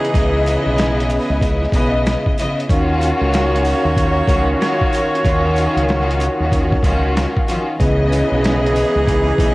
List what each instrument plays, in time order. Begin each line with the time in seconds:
Already playing: saxophone section E3 D#4 G#4
0.05 closed hi-hat
0.14 fingered electric bass C#2, string section C#3 B3 E4 D#5, kick, closed hi-hat, sleigh bells
0.46 closed hi-hat, sleigh bells
0.66 fingered electric bass B1
0.78 snare, closed hi-hat, sleigh bells
1.00 closed hi-hat
1.10 open hi-hat, sleigh bells
1.30 fingered electric bass C#2
1.41 kick, closed hi-hat, sleigh bells
1.63 snare
1.72 fingered electric bass B1, string section C#3 B3 E4 D#5, kick, closed hi-hat, sleigh bells
2.06 snare, closed hi-hat, sleigh bells
2.26 kick
2.37 string section C#3 B3 E4 D#5, closed hi-hat, sleigh bells
2.60 closed hi-hat
2.69 fingered electric bass D#2, string section D#3 C#4 F4 F#4, saxophone section A#3 F#4 C#5, kick, closed hi-hat, sleigh bells
3.01 closed hi-hat, sleigh bells
3.21 fingered electric bass C#2
3.33 snare, closed hi-hat, sleigh bells
3.56 closed hi-hat
3.65 open hi-hat, sleigh bells
3.85 fingered electric bass D#2
3.97 kick, closed hi-hat, sleigh bells
4.27 fingered electric bass C#2, string section D#3 C#4 F4 F#4, kick, closed hi-hat, sleigh bells
4.61 snare, closed hi-hat, sleigh bells
4.81 kick
4.93 closed hi-hat, sleigh bells
5.15 closed hi-hat
5.24 fingered electric bass D#2, string section D#3 C#4 F4 F#4, kick, closed hi-hat, sleigh bells
5.56 closed hi-hat, sleigh bells
5.76 fingered electric bass C#2, closed hi-hat
5.88 snare, closed hi-hat, sleigh bells
6.11 closed hi-hat
6.20 closed hi-hat, sleigh bells
6.40 fingered electric bass D#2
6.52 kick, closed hi-hat, sleigh bells
6.72 kick, snare
6.83 fingered electric bass C#2, string section D#3 C#4 F4 F#4, kick, closed hi-hat, sleigh bells
7.16 snare, closed hi-hat, sleigh bells
7.37 kick
7.47 string section D#3 C#4 F4 F#4, closed hi-hat, sleigh bells
7.79 fingered electric bass C#2, string section C#3 B3 E4 D#5, tonewheel organ C#3 E3 B3 D#5, saxophone section E3 D#4 G#4, kick, closed hi-hat, sleigh bells
8.12 closed hi-hat, sleigh bells
8.32 fingered electric bass B1
8.44 snare, closed hi-hat, sleigh bells
8.66 closed hi-hat
8.76 open hi-hat, sleigh bells
8.96 fingered electric bass C#2
9.08 kick, closed hi-hat, sleigh bells
9.38 fingered electric bass B1, string section C#3 B3 E4 D#5, kick, closed hi-hat, sleigh bells